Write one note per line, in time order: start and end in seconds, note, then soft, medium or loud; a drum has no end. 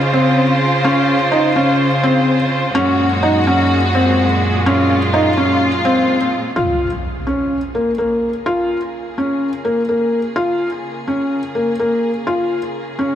0.00 2.71 C#3 medium
0.00 2.72 C#3 medium
0.00 2.71 F4 medium
0.00 2.71 C5 medium
0.13 0.43 C4 medium
0.84 1.15 C#4 loud
1.32 1.47 D#4 medium
1.56 1.86 C#4 medium
2.03 2.34 C4 medium
2.74 6.53 F#2 medium
2.74 6.52 A#2 medium
2.74 6.52 G#3 medium
2.74 3.05 C#4 loud
2.74 4.63 F#4 medium
3.23 3.38 D#4 medium
3.47 3.77 C#4 medium
3.95 4.24 C4 medium
4.66 4.96 C#4 medium
4.66 6.54 F4 medium
5.14 5.28 D#4 medium
5.37 5.67 C#4 medium
5.85 6.15 C4 medium
6.56 13.15 C#3 medium
6.56 13.15 A#3 medium
6.56 6.86 F4 medium
6.56 13.15 G#4 medium
6.56 impact medium
7.27 7.57 C#4 medium
7.75 7.90 A#3 medium
7.98 8.28 A#3 medium
8.46 8.76 F4 medium
9.18 9.48 C#4 medium
9.65 9.80 A#3 medium
9.89 10.19 A#3 medium
10.36 10.66 F4 medium
11.08 11.38 C#4 medium
11.55 11.70 A#3 medium
11.79 12.10 A#3 medium
12.27 12.57 F4 medium
12.99 13.15 C#4 medium